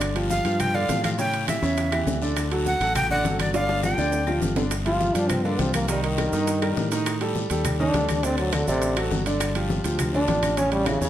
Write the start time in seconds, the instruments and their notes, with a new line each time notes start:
Already playing: fingered electric bass G1, grand piano D3 D4 D5
0.01 high bongo, high conga, high timbale, long guiro, claves, maracas
0.15 grand piano F3 F4 G4, high bongo, high conga, high timbale, maracas
0.30 flute F5, high bongo, high conga, low timbale, short guiro, maracas
0.44 fingered electric bass G2, grand piano F3 F4 G4, high timbale, short guiro, maracas
0.60 flute G5, high bongo, high conga, low conga, high timbale, long guiro, claves, maracas
0.74 grand piano D3 D4 D5, flute F5, high bongo, high conga, maracas
0.89 fingered electric bass A2, grand piano F3 F4 G4, high bongo, low bongo, high conga, high timbale, low timbale, short guiro, maracas
1.04 flute F5, high bongo, high conga, high timbale, short guiro, claves, maracas
1.18 grand piano C#3 C#4 C#5, flute G5, high bongo, high conga, long guiro, maracas
1.34 high bongo, high conga, high timbale, maracas
1.48 grand piano E3 E4 G4, flute E5, high bongo, high conga, high timbale, low timbale, short guiro, claves, maracas
1.62 fingered electric bass E2, grand piano C#3 C#4 C#5, high conga, short guiro, maracas
1.77 high bongo, high conga, high timbale, long guiro, maracas
1.92 grand piano E3 E4 G4, high bongo, high conga, high timbale, claves, maracas
2.07 fingered electric bass D2, high bongo, low bongo, high conga, low timbale, short guiro, maracas
2.22 grand piano D3 D4 D5, high bongo, short guiro, maracas
2.36 high bongo, high conga, high timbale, long guiro, claves, maracas
2.51 grand piano F#3 F#4 A4, high bongo, high conga, high timbale, maracas
2.66 flute F#5, high bongo, high conga, low timbale, short guiro, maracas
2.80 fingered electric bass A1, grand piano F#3 F#4 A4, high timbale, short guiro, maracas
2.95 flute G5, high bongo, high conga, low conga, high timbale, long guiro, claves, maracas
3.10 grand piano D3 D4 D5, flute F#5, high bongo, high conga, low conga, maracas
3.25 fingered electric bass G1, grand piano F#3 F#4 A4, high bongo, low bongo, high conga, high timbale, low timbale, short guiro, maracas
3.39 flute D5, high bongo, high conga, high timbale, short guiro, claves, maracas
3.54 grand piano D3 D4 D5, flute F5, high bongo, high conga, high timbale, long guiro, maracas
3.69 high bongo, high conga, high timbale, maracas
3.83 grand piano F3 F4 G4, flute G5, high bongo, high conga, low timbale, short guiro, claves, maracas
3.98 fingered electric bass D2, grand piano D3 D4 D5, low bongo, high conga, short guiro, maracas
4.12 high conga, low timbale, long guiro, maracas
4.27 grand piano F3 F4 G4, low bongo, high conga, claves, maracas
4.41 fingered electric bass G1, low bongo, high conga, low timbale, short guiro, maracas
4.56 grand piano D3 D4 D5, low bongo, high conga, low timbale, short guiro, maracas
4.71 high bongo, high timbale, long guiro, claves, maracas
4.85 grand piano F3 F4 G4, trombone F4, high conga, high timbale, maracas
5.00 high bongo, high conga, short guiro, maracas
5.15 fingered electric bass G2, grand piano F3 F4 G4, trombone D4, high conga, high timbale, short guiro, maracas
5.30 trombone C4, high bongo, high conga, low conga, high timbale, long guiro, claves, maracas
5.44 grand piano D3 D4 D5, trombone A#3, high conga, maracas
5.59 fingered electric bass C2, grand piano F3 F4 G4, trombone C4, high bongo, low bongo, high conga, high timbale, short guiro, maracas
5.74 trombone A#3, high conga, high timbale, short guiro, claves, maracas
5.88 grand piano D#3 D#4 D#5, trombone G3, high bongo, high timbale, maracas
6.03 trombone D#3, high bongo, high conga, high timbale, maracas
6.18 grand piano G3 G4 A#4, high bongo, high conga, high timbale, short guiro, claves, maracas
6.33 fingered electric bass G2, grand piano D#3 D#4 D#5, high bongo, high conga, short guiro, maracas
6.47 high bongo, high conga, high timbale, long guiro, maracas
6.62 grand piano G3 G4 A#4, high conga, high timbale, claves, maracas
6.77 fingered electric bass A2, high bongo, low bongo, high conga, short guiro, maracas
6.91 grand piano D#3 D#4 D#5, high timbale, short guiro, maracas
7.06 high bongo, high conga, high timbale, long guiro, claves, maracas
7.21 grand piano G3 G4 A4, high conga, high timbale, maracas
7.35 high bongo, high conga, short guiro, maracas
7.50 fingered electric bass D#2, grand piano G3 G4 A4, high conga, high timbale, short guiro, maracas
7.65 high bongo, high conga, low conga, high timbale, long guiro, claves, maracas
7.79 grand piano D#3 D#4 D#5, trombone D4, high conga, low conga, maracas
7.94 fingered electric bass D2, grand piano G3 G4 A4, high bongo, low bongo, high conga, high timbale, short guiro, maracas
8.09 high conga, high timbale, short guiro, claves, maracas
8.23 grand piano D3 D4 D5, trombone C4, high bongo, high timbale, long guiro, maracas
8.38 trombone F#3, high bongo, high conga, high timbale, maracas
8.53 trombone D3, grand piano F#3 F#4 A4, high bongo, high conga, high timbale, short guiro, claves, maracas
8.67 fingered electric bass A1, trombone C3, grand piano D3 D4 D5, high bongo, high conga, short guiro, maracas
8.82 high bongo, high conga, high timbale, long guiro, maracas
8.97 grand piano F#3 F#4 A4, high bongo, high conga, high timbale, claves, maracas
9.11 fingered electric bass G1, high bongo, low bongo, high conga, low timbale, short guiro, maracas
9.26 grand piano D3 D4 D5, high timbale, short guiro, maracas
9.40 high bongo, high conga, high timbale, long guiro, claves, maracas
9.55 grand piano F3 F4 G4, high conga, high timbale, maracas
9.70 high bongo, high conga, short guiro, maracas
9.84 fingered electric bass D2, grand piano F3 F4 G4, high conga, high timbale, short guiro, maracas
9.99 high bongo, high conga, low conga, high timbale, long guiro, claves, maracas
10.14 grand piano D3 D4 D5, trombone D4, high conga, maracas
10.28 fingered electric bass A1, grand piano F3 F4 G4, high bongo, low bongo, high conga, high timbale, low timbale, short guiro, maracas
10.43 high conga, high timbale, short guiro, claves, maracas
10.57 grand piano C#3 C#4 C#5, trombone C#4, high bongo, high conga, high timbale, long guiro, maracas
10.72 trombone G3, high bongo, high conga, high timbale, maracas
10.86 trombone C#3, grand piano E3 E4 G4, high bongo, high conga, high timbale, short guiro, claves, maracas
11.01 fingered electric bass E2, grand piano C#3 C#4 C#5, trombone C#3, high bongo, high conga, short guiro, maracas